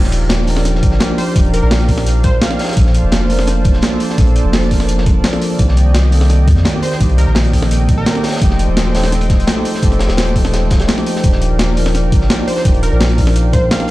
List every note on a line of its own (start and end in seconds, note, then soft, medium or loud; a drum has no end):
0.00 0.84 D#1 loud
0.00 0.44 F3 medium
0.00 0.45 D4 medium
0.00 0.46 D#4 medium
0.00 0.47 G4 medium
0.00 2.74 G4 medium
0.00 2.74 A#4 medium
0.00 2.74 D5 medium
0.00 5.55 F5 loud
0.00 snare soft
0.12 closed hi-hat medium
0.29 snare loud
0.29 closed hi-hat loud
0.29 closed hi-hat medium
0.45 1.06 F3 medium
0.45 1.07 D4 medium
0.45 1.08 D#4 medium
0.45 closed hi-hat medium
0.45 open hi-hat medium
0.50 1.09 A#4 medium
0.57 snare soft
0.57 snare medium
0.65 snare soft
0.65 closed hi-hat loud
0.65 closed hi-hat medium
0.75 snare soft
0.83 0.99 G1 medium
0.83 kick loud
0.83 closed hi-hat medium
0.92 snare soft
1.00 snare loud
1.00 closed hi-hat medium
1.08 1.32 F3 medium
1.08 1.34 D4 medium
1.08 1.34 D#4 medium
1.08 1.34 G4 medium
1.18 1.24 C5 medium
1.18 closed hi-hat medium
1.18 open hi-hat medium
1.27 1.33 C5 medium
1.33 1.61 D#1 loud
1.33 1.85 F3 medium
1.33 1.86 D4 medium
1.33 1.87 D#4 medium
1.33 kick loud
1.33 closed hi-hat loud
1.33 closed hi-hat medium
1.38 1.88 G4 medium
1.44 closed hi-hat soft
1.54 1.59 A#4 medium
1.54 closed hi-hat medium
1.63 2.40 A#1 medium
1.63 1.68 A#4 medium
1.71 snare loud
1.71 closed hi-hat loud
1.71 open hi-hat medium
1.80 closed hi-hat soft
1.86 2.48 F3 medium
1.86 2.48 D4 medium
1.86 2.49 D#4 medium
1.86 kick medium
1.86 closed hi-hat medium
1.86 open hi-hat medium
1.91 2.50 A#4 medium
1.97 snare soft
1.97 snare medium
2.06 closed hi-hat loud
2.06 closed hi-hat medium
2.23 2.40 C5 medium
2.23 kick loud
2.23 closed hi-hat medium
2.42 2.77 F5 medium
2.42 snare loud
2.42 closed hi-hat medium
2.49 2.73 F3 medium
2.49 2.75 D4 medium
2.49 2.75 D#4 medium
2.49 2.76 G4 medium
2.49 snare medium
2.49 closed hi-hat soft
2.59 snare medium
2.59 closed hi-hat medium
2.59 open hi-hat medium
2.64 snare medium
2.64 closed hi-hat medium
2.68 snare medium
2.68 closed hi-hat medium
2.72 3.26 F3 medium
2.72 snare medium
2.72 closed hi-hat medium
2.76 3.02 A#1 loud
2.76 3.27 A#3 medium
2.76 3.28 D4 medium
2.76 3.29 A4 medium
2.76 5.56 C5 medium
2.76 8.38 D5 medium
2.76 5.56 A5 medium
2.76 kick loud
2.76 closed hi-hat medium
2.86 snare soft
2.94 closed hi-hat medium
3.04 3.81 F1 medium
3.12 snare loud
3.12 closed hi-hat medium
3.27 3.89 F3 medium
3.27 3.90 A#3 medium
3.27 3.90 D4 medium
3.27 closed hi-hat medium
3.27 open hi-hat medium
3.33 3.91 A#4 medium
3.39 snare soft
3.39 snare medium
3.47 snare soft
3.47 closed hi-hat medium
3.65 kick loud
3.65 closed hi-hat medium
3.73 snare soft
3.82 snare loud
3.82 closed hi-hat medium
3.90 4.14 F3 medium
3.90 4.16 A#3 medium
3.90 4.16 D4 medium
3.90 4.17 A4 medium
4.00 closed hi-hat medium
4.00 open hi-hat medium
4.10 snare soft
4.16 4.43 A#1 loud
4.16 4.67 F3 medium
4.16 4.69 A#3 medium
4.16 4.69 D4 medium
4.16 kick loud
4.16 closed hi-hat medium
4.21 4.70 A4 medium
4.27 closed hi-hat soft
4.36 closed hi-hat medium
4.45 5.23 F1 medium
4.53 snare loud
4.53 closed hi-hat medium
4.53 open hi-hat medium
4.63 closed hi-hat soft
4.69 5.30 F3 medium
4.69 5.31 A#3 medium
4.69 5.32 D4 medium
4.69 kick medium
4.69 closed hi-hat medium
4.69 open hi-hat medium
4.74 5.32 A#4 medium
4.80 snare soft
4.80 snare medium
4.88 closed hi-hat medium
4.98 snare soft
5.06 kick loud
5.06 closed hi-hat medium
5.24 snare loud
5.24 closed hi-hat medium
5.32 5.57 F3 medium
5.32 5.57 A#3 medium
5.32 5.57 D4 medium
5.32 5.58 A4 medium
5.32 snare soft
5.32 closed hi-hat soft
5.42 closed hi-hat medium
5.42 open hi-hat medium
5.57 6.49 C2 loud
5.57 6.08 D#3 medium
5.57 6.10 A#3 medium
5.57 8.39 A#3 medium
5.57 6.11 C4 medium
5.57 11.20 D#5 medium
5.57 13.91 G5 medium
5.57 kick loud
5.57 closed hi-hat medium
5.62 6.11 G4 medium
5.69 snare soft
5.77 closed hi-hat medium
5.94 snare loud
5.94 closed hi-hat medium
6.10 6.71 D#3 medium
6.10 6.72 A#3 medium
6.10 6.73 C4 medium
6.10 closed hi-hat medium
6.10 open hi-hat medium
6.15 6.74 A4 medium
6.21 snare soft
6.21 snare medium
6.29 snare soft
6.29 closed hi-hat medium
6.48 6.64 F2 loud
6.48 kick loud
6.48 closed hi-hat medium
6.56 snare soft
6.65 snare loud
6.65 closed hi-hat medium
6.73 6.97 D#3 medium
6.73 6.98 A#3 medium
6.73 6.99 C4 medium
6.73 6.99 G4 medium
6.83 6.88 C5 medium
6.83 closed hi-hat medium
6.83 open hi-hat medium
6.92 6.97 C5 medium
6.92 snare soft
6.98 7.26 C2 loud
6.98 7.50 D#3 medium
6.98 7.51 A#3 medium
6.98 7.52 C4 medium
6.98 kick loud
6.98 closed hi-hat medium
7.03 7.53 G4 medium
7.09 closed hi-hat soft
7.18 7.24 A#4 medium
7.18 closed hi-hat medium
7.27 8.05 A#1 medium
7.27 7.33 A#4 medium
7.35 snare loud
7.35 closed hi-hat medium
7.35 open hi-hat medium
7.45 closed hi-hat soft
7.51 8.12 D#3 medium
7.51 8.13 A#3 medium
7.51 8.14 C4 medium
7.51 kick medium
7.51 closed hi-hat medium
7.51 open hi-hat medium
7.56 8.15 A4 medium
7.62 snare soft
7.62 snare medium
7.71 closed hi-hat loud
7.71 closed hi-hat medium
7.89 kick loud
7.89 closed hi-hat medium
7.98 8.33 A#4 medium
8.06 snare loud
8.06 closed hi-hat medium
8.14 8.39 D#3 medium
8.14 8.39 A#3 medium
8.14 8.40 C4 medium
8.14 8.40 G4 medium
8.14 snare soft
8.14 closed hi-hat soft
8.23 snare medium
8.23 closed hi-hat medium
8.23 open hi-hat medium
8.29 snare medium
8.29 closed hi-hat medium
8.32 snare medium
8.32 closed hi-hat medium
8.38 8.91 F3 medium
8.38 8.92 A3 medium
8.38 snare medium
8.38 closed hi-hat medium
8.42 8.67 F1 loud
8.42 8.93 D#4 medium
8.42 8.94 G4 medium
8.42 11.21 A4 medium
8.42 11.21 C5 medium
8.42 kick loud
8.42 closed hi-hat medium
8.51 snare medium
8.59 closed hi-hat medium
8.68 9.46 D#1 medium
8.77 snare loud
8.77 closed hi-hat medium
8.92 9.53 F3 medium
8.92 9.54 A3 medium
8.92 9.55 D#4 medium
8.92 snare loud
8.92 closed hi-hat medium
8.92 open hi-hat medium
8.97 9.56 A4 medium
9.04 snare loud
9.04 snare medium
9.04 closed hi-hat medium
9.12 snare soft
9.12 closed hi-hat medium
9.21 closed hi-hat medium
9.30 kick loud
9.30 snare soft
9.30 closed hi-hat medium
9.40 closed hi-hat medium
9.47 snare loud
9.47 closed hi-hat medium
9.55 9.79 F3 medium
9.55 9.80 A3 medium
9.55 9.81 D#4 medium
9.55 9.81 G4 medium
9.65 closed hi-hat medium
9.65 open hi-hat medium
9.74 snare soft
9.80 10.08 F1 loud
9.80 10.32 F3 medium
9.80 10.33 A3 medium
9.80 10.34 D#4 medium
9.80 kick loud
9.80 closed hi-hat medium
9.85 10.35 G4 medium
9.92 snare soft
9.92 closed hi-hat soft
9.99 snare loud
9.99 closed hi-hat medium
10.09 10.87 D#1 medium
10.09 snare loud
10.09 closed hi-hat medium
10.17 snare loud
10.17 closed hi-hat loud
10.17 open hi-hat medium
10.27 closed hi-hat soft
10.33 10.95 F3 medium
10.33 10.95 A3 medium
10.33 10.96 D#4 medium
10.33 kick medium
10.33 closed hi-hat medium
10.33 open hi-hat medium
10.38 10.97 A4 medium
10.44 snare soft
10.44 snare medium
10.53 snare loud
10.53 closed hi-hat medium
10.53 closed hi-hat loud
10.71 kick loud
10.71 snare loud
10.71 closed hi-hat medium
10.79 snare medium
10.79 closed hi-hat medium
10.88 snare loud
10.88 closed hi-hat medium
10.88 closed hi-hat loud
10.96 11.20 F3 medium
10.96 11.22 A3 medium
10.96 11.22 D#4 medium
10.96 11.23 G4 medium
10.96 snare soft
10.96 closed hi-hat soft
11.06 closed hi-hat medium
11.06 open hi-hat medium
11.16 snare soft
11.21 12.14 D#1 loud
11.21 11.73 F3 medium
11.21 11.74 D4 medium
11.21 11.75 D#4 medium
11.21 13.91 A#4 medium
11.21 13.91 D5 medium
11.21 13.91 F5 medium
11.21 kick loud
11.21 closed hi-hat medium
11.27 11.76 G4 medium
11.32 snare soft
11.42 closed hi-hat medium
11.59 snare loud
11.59 closed hi-hat medium
11.59 closed hi-hat loud
11.74 12.36 F3 medium
11.74 12.37 D4 medium
11.74 12.37 D#4 medium
11.74 closed hi-hat medium
11.74 open hi-hat medium
11.80 12.38 A#4 medium
11.86 snare medium
11.94 snare soft
11.94 closed hi-hat medium
11.94 closed hi-hat loud
12.12 12.28 G1 loud
12.12 kick loud
12.12 closed hi-hat medium
12.21 snare soft
12.30 snare loud
12.30 closed hi-hat medium
12.38 12.61 F3 medium
12.38 12.63 D4 medium
12.38 12.63 D#4 medium
12.38 12.64 G4 medium
12.47 12.53 C5 medium
12.47 closed hi-hat medium
12.47 open hi-hat medium
12.56 12.62 C5 medium
12.56 snare soft
12.63 12.90 D#1 loud
12.63 13.14 F3 medium
12.63 13.16 D4 medium
12.63 13.17 D#4 medium
12.63 kick loud
12.63 closed hi-hat medium
12.68 13.17 G4 medium
12.74 closed hi-hat soft
12.83 12.89 A#4 medium
12.83 closed hi-hat medium
12.92 13.70 A#1 medium
12.92 12.97 A#4 medium
13.01 snare loud
13.01 closed hi-hat loud
13.01 open hi-hat medium
13.09 closed hi-hat soft
13.16 13.77 F3 medium
13.16 13.78 D4 medium
13.16 13.79 D#4 medium
13.16 kick medium
13.16 closed hi-hat medium
13.16 open hi-hat medium
13.21 13.79 A#4 medium
13.26 snare soft
13.26 snare medium
13.36 closed hi-hat medium
13.53 13.69 C5 medium
13.53 kick loud
13.53 closed hi-hat medium
13.71 13.91 F5 medium
13.71 snare loud
13.71 closed hi-hat medium
13.79 13.91 F3 medium
13.79 13.91 D4 medium
13.79 13.91 D#4 medium
13.79 13.91 G4 medium
13.79 snare soft
13.79 closed hi-hat soft
13.88 closed hi-hat medium